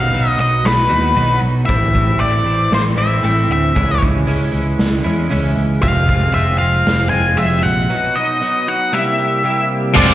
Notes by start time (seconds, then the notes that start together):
Already playing: B2 F#3 B3 D#4 F#4 F5
0.12 B1 F#3 B3 D#4 F#4, open hi-hat
0.30 D#5
0.38 B1 B3 D#4 F#4 D#5
0.65 B1 B4, snare, open hi-hat
0.89 D#2 B3 D#4 F#4
1.14 B1 B2 F#3 B3 D#4 F#4, open hi-hat
1.42 B1
1.66 A1 A2 E3 A3 C4 E4 E5, kick
1.70 open hi-hat
1.93 A3 C4 E4, kick
2.19 A1 E3 A3 C4 E4 D5, open hi-hat
2.44 A1 A3 C4 E4
2.71 A1 C5, snare, open hi-hat
2.97 A1 A3 C4 E4 E5
3.23 A1 A2 E3 A3 C4 E4, open hi-hat
3.49 D2 E5
3.75 C#2 C#3 E3 G#3 C#4 E4, kick, open hi-hat
4.00 C#2 G#3 C#4 E4, kick
4.26 C#2 E3 G#3 C#4 E4, open hi-hat
4.52 C#2 G#3 C#4 E4
4.79 C#2, snare, open hi-hat
5.04 E2 G#3 C#4 E4
5.30 C#2 C#3 E3 G#3 C#4 E4, open hi-hat
5.57 C#2
5.82 F1 F2 C3 F3 G#3 C4 F4 F5, kick, open hi-hat
6.08 F3 G#3 C4 F4, kick
6.34 F1 F3 G#3 C4 F4 E5, open hi-hat
6.58 F1 F3 G#3 C4 F4 F5
6.87 F1, snare, open hi-hat
7.09 F1 G#3 C4 F4 G#5
7.14 F3
7.37 F1 F2 C3 F3 G#3 C4 F4 E5, open hi-hat
7.63 A#1 F#5
7.89 B2 F#3 B3 D#4 F#4
8.16 B3 D#4 F#4 D#5
8.41 F#3 B3 D#4 F#4
8.67 B3 D#4 F#4 F#5
8.92 C3 G3 A#3 E4 G4 E5
9.18 A#3 E4 G4
9.43 C3 G3 A#3 E4 G4
9.94 F1 F3 G#3 C4 F4 D5, kick, crash
9.98 F4 C5 G#5